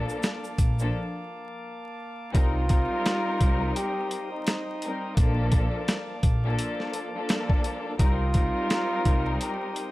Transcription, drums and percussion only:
0, 0, Header, 1, 2, 480
1, 0, Start_track
1, 0, Tempo, 705882
1, 1597, Time_signature, 4, 2, 24, 8
1, 6743, End_track
2, 0, Start_track
2, 0, Title_t, "Drums"
2, 63, Note_on_c, 9, 82, 49
2, 131, Note_off_c, 9, 82, 0
2, 155, Note_on_c, 9, 82, 73
2, 159, Note_on_c, 9, 42, 88
2, 163, Note_on_c, 9, 38, 108
2, 223, Note_off_c, 9, 82, 0
2, 227, Note_off_c, 9, 42, 0
2, 231, Note_off_c, 9, 38, 0
2, 301, Note_on_c, 9, 82, 55
2, 369, Note_off_c, 9, 82, 0
2, 398, Note_on_c, 9, 36, 92
2, 398, Note_on_c, 9, 42, 78
2, 399, Note_on_c, 9, 82, 58
2, 466, Note_off_c, 9, 36, 0
2, 466, Note_off_c, 9, 42, 0
2, 467, Note_off_c, 9, 82, 0
2, 538, Note_on_c, 9, 82, 58
2, 606, Note_off_c, 9, 82, 0
2, 1595, Note_on_c, 9, 36, 110
2, 1596, Note_on_c, 9, 42, 102
2, 1663, Note_off_c, 9, 36, 0
2, 1664, Note_off_c, 9, 42, 0
2, 1831, Note_on_c, 9, 42, 81
2, 1836, Note_on_c, 9, 36, 90
2, 1899, Note_off_c, 9, 42, 0
2, 1904, Note_off_c, 9, 36, 0
2, 2078, Note_on_c, 9, 42, 86
2, 2081, Note_on_c, 9, 38, 109
2, 2146, Note_off_c, 9, 42, 0
2, 2149, Note_off_c, 9, 38, 0
2, 2316, Note_on_c, 9, 42, 78
2, 2317, Note_on_c, 9, 36, 94
2, 2384, Note_off_c, 9, 42, 0
2, 2385, Note_off_c, 9, 36, 0
2, 2558, Note_on_c, 9, 42, 99
2, 2626, Note_off_c, 9, 42, 0
2, 2795, Note_on_c, 9, 42, 74
2, 2863, Note_off_c, 9, 42, 0
2, 3037, Note_on_c, 9, 42, 110
2, 3044, Note_on_c, 9, 38, 121
2, 3105, Note_off_c, 9, 42, 0
2, 3112, Note_off_c, 9, 38, 0
2, 3277, Note_on_c, 9, 42, 73
2, 3345, Note_off_c, 9, 42, 0
2, 3516, Note_on_c, 9, 36, 116
2, 3516, Note_on_c, 9, 42, 105
2, 3584, Note_off_c, 9, 36, 0
2, 3584, Note_off_c, 9, 42, 0
2, 3751, Note_on_c, 9, 42, 76
2, 3757, Note_on_c, 9, 36, 90
2, 3819, Note_off_c, 9, 42, 0
2, 3825, Note_off_c, 9, 36, 0
2, 3999, Note_on_c, 9, 42, 86
2, 4003, Note_on_c, 9, 38, 110
2, 4067, Note_off_c, 9, 42, 0
2, 4071, Note_off_c, 9, 38, 0
2, 4237, Note_on_c, 9, 42, 79
2, 4238, Note_on_c, 9, 36, 95
2, 4305, Note_off_c, 9, 42, 0
2, 4306, Note_off_c, 9, 36, 0
2, 4478, Note_on_c, 9, 42, 101
2, 4546, Note_off_c, 9, 42, 0
2, 4624, Note_on_c, 9, 38, 33
2, 4692, Note_off_c, 9, 38, 0
2, 4716, Note_on_c, 9, 42, 73
2, 4784, Note_off_c, 9, 42, 0
2, 4957, Note_on_c, 9, 42, 109
2, 4964, Note_on_c, 9, 38, 121
2, 5025, Note_off_c, 9, 42, 0
2, 5032, Note_off_c, 9, 38, 0
2, 5097, Note_on_c, 9, 36, 96
2, 5165, Note_off_c, 9, 36, 0
2, 5197, Note_on_c, 9, 42, 70
2, 5265, Note_off_c, 9, 42, 0
2, 5436, Note_on_c, 9, 36, 111
2, 5436, Note_on_c, 9, 42, 101
2, 5504, Note_off_c, 9, 36, 0
2, 5504, Note_off_c, 9, 42, 0
2, 5671, Note_on_c, 9, 42, 78
2, 5677, Note_on_c, 9, 36, 91
2, 5739, Note_off_c, 9, 42, 0
2, 5745, Note_off_c, 9, 36, 0
2, 5918, Note_on_c, 9, 42, 88
2, 5921, Note_on_c, 9, 38, 111
2, 5986, Note_off_c, 9, 42, 0
2, 5989, Note_off_c, 9, 38, 0
2, 6157, Note_on_c, 9, 42, 79
2, 6158, Note_on_c, 9, 36, 94
2, 6225, Note_off_c, 9, 42, 0
2, 6226, Note_off_c, 9, 36, 0
2, 6397, Note_on_c, 9, 42, 99
2, 6465, Note_off_c, 9, 42, 0
2, 6637, Note_on_c, 9, 42, 73
2, 6705, Note_off_c, 9, 42, 0
2, 6743, End_track
0, 0, End_of_file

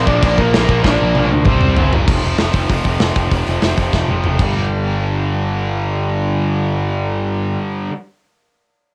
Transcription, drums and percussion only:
0, 0, Header, 1, 2, 480
1, 0, Start_track
1, 0, Key_signature, -2, "minor"
1, 0, Tempo, 309598
1, 1324, Time_signature, 4, 2, 24, 8
1, 13870, End_track
2, 0, Start_track
2, 0, Title_t, "Drums"
2, 107, Note_on_c, 9, 36, 93
2, 262, Note_off_c, 9, 36, 0
2, 349, Note_on_c, 9, 36, 117
2, 350, Note_on_c, 9, 49, 72
2, 504, Note_off_c, 9, 36, 0
2, 505, Note_off_c, 9, 49, 0
2, 587, Note_on_c, 9, 36, 90
2, 742, Note_off_c, 9, 36, 0
2, 831, Note_on_c, 9, 49, 69
2, 836, Note_on_c, 9, 38, 115
2, 986, Note_off_c, 9, 49, 0
2, 991, Note_off_c, 9, 38, 0
2, 1066, Note_on_c, 9, 36, 93
2, 1221, Note_off_c, 9, 36, 0
2, 1305, Note_on_c, 9, 36, 104
2, 1314, Note_on_c, 9, 38, 70
2, 1460, Note_off_c, 9, 36, 0
2, 1469, Note_off_c, 9, 38, 0
2, 1783, Note_on_c, 9, 48, 80
2, 1938, Note_off_c, 9, 48, 0
2, 2245, Note_on_c, 9, 47, 93
2, 2254, Note_on_c, 9, 36, 112
2, 2400, Note_off_c, 9, 47, 0
2, 2409, Note_off_c, 9, 36, 0
2, 2490, Note_on_c, 9, 45, 87
2, 2645, Note_off_c, 9, 45, 0
2, 2735, Note_on_c, 9, 43, 111
2, 2890, Note_off_c, 9, 43, 0
2, 2986, Note_on_c, 9, 43, 100
2, 3141, Note_off_c, 9, 43, 0
2, 3220, Note_on_c, 9, 36, 104
2, 3225, Note_on_c, 9, 57, 113
2, 3375, Note_off_c, 9, 36, 0
2, 3380, Note_off_c, 9, 57, 0
2, 3465, Note_on_c, 9, 46, 50
2, 3620, Note_off_c, 9, 46, 0
2, 3694, Note_on_c, 9, 46, 71
2, 3698, Note_on_c, 9, 38, 112
2, 3849, Note_off_c, 9, 46, 0
2, 3853, Note_off_c, 9, 38, 0
2, 3927, Note_on_c, 9, 46, 60
2, 3937, Note_on_c, 9, 36, 85
2, 4082, Note_off_c, 9, 46, 0
2, 4092, Note_off_c, 9, 36, 0
2, 4177, Note_on_c, 9, 46, 81
2, 4180, Note_on_c, 9, 36, 95
2, 4332, Note_off_c, 9, 46, 0
2, 4335, Note_off_c, 9, 36, 0
2, 4405, Note_on_c, 9, 46, 55
2, 4418, Note_on_c, 9, 36, 81
2, 4560, Note_off_c, 9, 46, 0
2, 4573, Note_off_c, 9, 36, 0
2, 4648, Note_on_c, 9, 46, 77
2, 4653, Note_on_c, 9, 38, 111
2, 4803, Note_off_c, 9, 46, 0
2, 4808, Note_off_c, 9, 38, 0
2, 4891, Note_on_c, 9, 46, 59
2, 4898, Note_on_c, 9, 36, 91
2, 5046, Note_off_c, 9, 46, 0
2, 5053, Note_off_c, 9, 36, 0
2, 5138, Note_on_c, 9, 36, 89
2, 5139, Note_on_c, 9, 46, 76
2, 5293, Note_off_c, 9, 36, 0
2, 5294, Note_off_c, 9, 46, 0
2, 5373, Note_on_c, 9, 46, 57
2, 5528, Note_off_c, 9, 46, 0
2, 5612, Note_on_c, 9, 46, 79
2, 5616, Note_on_c, 9, 38, 104
2, 5767, Note_off_c, 9, 46, 0
2, 5771, Note_off_c, 9, 38, 0
2, 5849, Note_on_c, 9, 46, 59
2, 5855, Note_on_c, 9, 36, 82
2, 6004, Note_off_c, 9, 46, 0
2, 6010, Note_off_c, 9, 36, 0
2, 6092, Note_on_c, 9, 38, 62
2, 6095, Note_on_c, 9, 36, 90
2, 6247, Note_off_c, 9, 38, 0
2, 6250, Note_off_c, 9, 36, 0
2, 6329, Note_on_c, 9, 48, 58
2, 6484, Note_off_c, 9, 48, 0
2, 6570, Note_on_c, 9, 45, 89
2, 6725, Note_off_c, 9, 45, 0
2, 6808, Note_on_c, 9, 57, 83
2, 6812, Note_on_c, 9, 36, 96
2, 6963, Note_off_c, 9, 57, 0
2, 6967, Note_off_c, 9, 36, 0
2, 13870, End_track
0, 0, End_of_file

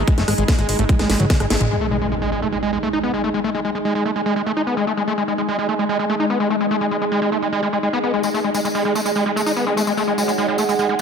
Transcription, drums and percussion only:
0, 0, Header, 1, 2, 480
1, 0, Start_track
1, 0, Tempo, 408163
1, 88, Time_signature, 4, 2, 24, 8
1, 12952, End_track
2, 0, Start_track
2, 0, Title_t, "Drums"
2, 89, Note_on_c, 9, 36, 112
2, 89, Note_on_c, 9, 42, 72
2, 206, Note_off_c, 9, 36, 0
2, 207, Note_off_c, 9, 42, 0
2, 209, Note_on_c, 9, 38, 38
2, 209, Note_on_c, 9, 42, 42
2, 327, Note_off_c, 9, 38, 0
2, 327, Note_off_c, 9, 42, 0
2, 329, Note_on_c, 9, 37, 77
2, 329, Note_on_c, 9, 46, 103
2, 446, Note_off_c, 9, 37, 0
2, 446, Note_off_c, 9, 46, 0
2, 449, Note_on_c, 9, 42, 43
2, 566, Note_off_c, 9, 42, 0
2, 569, Note_on_c, 9, 36, 117
2, 569, Note_on_c, 9, 38, 123
2, 569, Note_on_c, 9, 42, 70
2, 686, Note_off_c, 9, 36, 0
2, 687, Note_off_c, 9, 38, 0
2, 687, Note_off_c, 9, 42, 0
2, 689, Note_on_c, 9, 37, 40
2, 689, Note_on_c, 9, 42, 42
2, 807, Note_off_c, 9, 37, 0
2, 807, Note_off_c, 9, 42, 0
2, 809, Note_on_c, 9, 46, 91
2, 926, Note_off_c, 9, 46, 0
2, 929, Note_on_c, 9, 42, 42
2, 1046, Note_off_c, 9, 42, 0
2, 1049, Note_on_c, 9, 36, 116
2, 1049, Note_on_c, 9, 42, 71
2, 1049, Note_on_c, 9, 48, 64
2, 1166, Note_off_c, 9, 36, 0
2, 1166, Note_off_c, 9, 42, 0
2, 1166, Note_off_c, 9, 48, 0
2, 1169, Note_on_c, 9, 37, 38
2, 1169, Note_on_c, 9, 38, 56
2, 1169, Note_on_c, 9, 42, 40
2, 1286, Note_off_c, 9, 37, 0
2, 1286, Note_off_c, 9, 38, 0
2, 1286, Note_off_c, 9, 42, 0
2, 1289, Note_on_c, 9, 38, 77
2, 1289, Note_on_c, 9, 46, 108
2, 1406, Note_off_c, 9, 38, 0
2, 1406, Note_off_c, 9, 46, 0
2, 1409, Note_on_c, 9, 42, 43
2, 1409, Note_on_c, 9, 47, 68
2, 1526, Note_off_c, 9, 42, 0
2, 1526, Note_off_c, 9, 47, 0
2, 1529, Note_on_c, 9, 36, 118
2, 1529, Note_on_c, 9, 38, 117
2, 1529, Note_on_c, 9, 42, 69
2, 1529, Note_on_c, 9, 47, 86
2, 1646, Note_off_c, 9, 36, 0
2, 1646, Note_off_c, 9, 38, 0
2, 1646, Note_off_c, 9, 42, 0
2, 1646, Note_off_c, 9, 47, 0
2, 1649, Note_on_c, 9, 37, 79
2, 1649, Note_on_c, 9, 42, 42
2, 1766, Note_off_c, 9, 37, 0
2, 1766, Note_off_c, 9, 42, 0
2, 1769, Note_on_c, 9, 38, 99
2, 1769, Note_on_c, 9, 46, 89
2, 1886, Note_off_c, 9, 38, 0
2, 1886, Note_off_c, 9, 46, 0
2, 1889, Note_on_c, 9, 42, 42
2, 1889, Note_on_c, 9, 45, 91
2, 2006, Note_off_c, 9, 42, 0
2, 2006, Note_off_c, 9, 45, 0
2, 9682, Note_on_c, 9, 54, 65
2, 9800, Note_off_c, 9, 54, 0
2, 9815, Note_on_c, 9, 54, 35
2, 9932, Note_off_c, 9, 54, 0
2, 10048, Note_on_c, 9, 54, 78
2, 10166, Note_off_c, 9, 54, 0
2, 10173, Note_on_c, 9, 54, 58
2, 10291, Note_off_c, 9, 54, 0
2, 10291, Note_on_c, 9, 54, 37
2, 10408, Note_off_c, 9, 54, 0
2, 10530, Note_on_c, 9, 54, 72
2, 10648, Note_off_c, 9, 54, 0
2, 10651, Note_on_c, 9, 54, 67
2, 10763, Note_off_c, 9, 54, 0
2, 10763, Note_on_c, 9, 54, 37
2, 10881, Note_off_c, 9, 54, 0
2, 11019, Note_on_c, 9, 54, 73
2, 11130, Note_off_c, 9, 54, 0
2, 11130, Note_on_c, 9, 54, 69
2, 11248, Note_off_c, 9, 54, 0
2, 11249, Note_on_c, 9, 54, 39
2, 11367, Note_off_c, 9, 54, 0
2, 11493, Note_on_c, 9, 54, 82
2, 11608, Note_off_c, 9, 54, 0
2, 11608, Note_on_c, 9, 54, 59
2, 11725, Note_off_c, 9, 54, 0
2, 11729, Note_on_c, 9, 54, 40
2, 11846, Note_off_c, 9, 54, 0
2, 11971, Note_on_c, 9, 54, 78
2, 12089, Note_off_c, 9, 54, 0
2, 12098, Note_on_c, 9, 54, 65
2, 12203, Note_off_c, 9, 54, 0
2, 12203, Note_on_c, 9, 54, 38
2, 12321, Note_off_c, 9, 54, 0
2, 12443, Note_on_c, 9, 54, 75
2, 12561, Note_off_c, 9, 54, 0
2, 12572, Note_on_c, 9, 54, 60
2, 12688, Note_off_c, 9, 54, 0
2, 12688, Note_on_c, 9, 54, 36
2, 12806, Note_off_c, 9, 54, 0
2, 12952, End_track
0, 0, End_of_file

